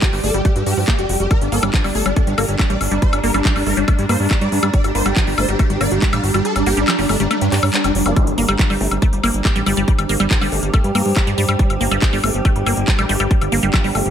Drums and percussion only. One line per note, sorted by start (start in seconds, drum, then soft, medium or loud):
0.02 kick loud
0.02 clap loud
0.02 closed hi-hat medium
0.13 open hi-hat medium
0.24 open hi-hat loud
0.34 closed hi-hat medium
0.45 kick loud
0.45 closed hi-hat medium
0.56 closed hi-hat medium
0.66 open hi-hat loud
0.77 open hi-hat medium
0.88 kick loud
0.88 clap loud
0.88 closed hi-hat medium
0.99 closed hi-hat medium
1.09 open hi-hat loud
1.20 closed hi-hat medium
1.31 kick loud
1.31 closed hi-hat medium
1.31 high woodblock soft
1.41 closed hi-hat medium
1.52 open hi-hat loud
1.63 closed hi-hat medium
1.63 high woodblock medium
1.74 kick loud
1.74 clap loud
1.74 closed hi-hat medium
1.84 open hi-hat medium
1.84 high woodblock soft
1.95 open hi-hat loud
2.06 closed hi-hat medium
2.06 high woodblock soft
2.16 kick loud
2.16 closed hi-hat medium
2.27 closed hi-hat medium
2.38 open hi-hat loud
2.38 high woodblock medium
2.49 closed hi-hat medium
2.59 kick loud
2.59 clap loud
2.59 closed hi-hat medium
2.59 high woodblock soft
2.70 closed hi-hat medium
2.81 open hi-hat loud
2.81 high woodblock soft
2.91 closed hi-hat medium
3.02 kick loud
3.02 closed hi-hat medium
3.13 closed hi-hat medium
3.13 high woodblock medium
3.24 open hi-hat loud
3.34 closed hi-hat medium
3.34 high woodblock soft
3.45 kick loud
3.45 clap loud
3.45 closed hi-hat medium
3.56 open hi-hat medium
3.56 high woodblock soft
3.66 open hi-hat loud
3.77 closed hi-hat medium
3.88 kick loud
3.88 closed hi-hat medium
3.88 high woodblock medium
3.99 closed hi-hat medium
4.09 open hi-hat loud
4.09 high woodblock soft
4.20 open hi-hat medium
4.31 kick loud
4.31 clap loud
4.31 closed hi-hat medium
4.31 high woodblock soft
4.41 closed hi-hat medium
4.52 open hi-hat loud
4.63 closed hi-hat medium
4.63 high woodblock medium
4.74 kick loud
4.74 closed hi-hat medium
4.84 closed hi-hat medium
4.84 high woodblock soft
4.95 open hi-hat loud
5.06 closed hi-hat medium
5.06 high woodblock soft
5.16 kick loud
5.16 clap loud
5.16 closed hi-hat medium
5.27 open hi-hat medium
5.38 open hi-hat loud
5.38 high woodblock medium
5.49 closed hi-hat medium
5.59 kick loud
5.59 closed hi-hat medium
5.59 high woodblock soft
5.70 closed hi-hat medium
5.81 open hi-hat loud
5.81 high woodblock soft
5.91 closed hi-hat medium
6.02 kick loud
6.02 clap loud
6.02 closed hi-hat medium
6.13 closed hi-hat medium
6.13 high woodblock medium
6.24 open hi-hat medium
6.34 closed hi-hat medium
6.34 high woodblock soft
6.45 closed hi-hat medium
6.56 closed hi-hat medium
6.56 high woodblock soft
6.66 open hi-hat loud
6.77 closed hi-hat medium
6.88 clap loud
6.88 closed hi-hat medium
6.88 high woodblock medium
6.99 open hi-hat medium
7.09 open hi-hat loud
7.09 high woodblock soft
7.20 closed hi-hat medium
7.31 closed hi-hat medium
7.31 high woodblock soft
7.41 closed hi-hat medium
7.52 clap medium
7.52 open hi-hat loud
7.63 open hi-hat medium
7.63 high woodblock medium
7.74 clap loud
7.74 closed hi-hat medium
7.84 closed hi-hat medium
7.84 high woodblock soft
7.95 open hi-hat loud
8.06 closed hi-hat medium
8.06 high woodblock soft
8.16 kick loud
8.16 closed hi-hat medium
8.16 high woodblock soft
8.27 closed hi-hat medium
8.38 open hi-hat loud
8.49 closed hi-hat medium
8.49 high woodblock medium
8.59 kick loud
8.59 clap loud
8.59 closed hi-hat medium
8.70 open hi-hat medium
8.70 high woodblock soft
8.81 open hi-hat loud
8.91 closed hi-hat medium
8.91 high woodblock soft
9.02 kick loud
9.02 closed hi-hat medium
9.13 closed hi-hat medium
9.24 open hi-hat loud
9.24 high woodblock medium
9.34 closed hi-hat medium
9.45 kick loud
9.45 clap loud
9.45 closed hi-hat medium
9.45 high woodblock soft
9.56 closed hi-hat medium
9.66 open hi-hat loud
9.66 high woodblock soft
9.77 closed hi-hat medium
9.88 kick loud
9.88 closed hi-hat medium
9.99 closed hi-hat medium
9.99 high woodblock medium
10.09 open hi-hat loud
10.20 closed hi-hat medium
10.20 high woodblock soft
10.31 kick loud
10.31 clap loud
10.31 closed hi-hat medium
10.41 open hi-hat medium
10.41 high woodblock soft
10.52 open hi-hat loud
10.63 closed hi-hat medium
10.74 kick loud
10.74 closed hi-hat medium
10.74 high woodblock medium
10.84 closed hi-hat medium
10.95 open hi-hat loud
10.95 high woodblock soft
11.06 open hi-hat medium
11.16 kick loud
11.16 clap loud
11.16 closed hi-hat medium
11.16 high woodblock soft
11.27 closed hi-hat medium
11.38 open hi-hat loud
11.49 closed hi-hat medium
11.49 high woodblock medium
11.59 kick loud
11.59 closed hi-hat medium
11.70 closed hi-hat medium
11.70 high woodblock soft
11.81 open hi-hat loud
11.91 closed hi-hat medium
11.91 high woodblock soft
12.02 kick loud
12.02 clap loud
12.02 closed hi-hat medium
12.13 open hi-hat medium
12.24 open hi-hat loud
12.24 high woodblock medium
12.34 closed hi-hat medium
12.45 kick loud
12.45 closed hi-hat medium
12.45 high woodblock soft
12.56 closed hi-hat medium
12.66 open hi-hat loud
12.66 high woodblock soft
12.77 closed hi-hat medium
12.88 kick loud
12.88 clap loud
12.88 closed hi-hat medium
12.99 closed hi-hat medium
12.99 high woodblock medium
13.09 open hi-hat loud
13.20 closed hi-hat medium
13.20 high woodblock soft
13.31 kick loud
13.31 closed hi-hat medium
13.41 closed hi-hat medium
13.41 high woodblock soft
13.52 open hi-hat loud
13.63 closed hi-hat medium
13.74 kick loud
13.74 clap loud
13.74 closed hi-hat medium
13.74 high woodblock medium
13.84 open hi-hat medium
13.95 open hi-hat loud
13.95 high woodblock soft
14.06 closed hi-hat medium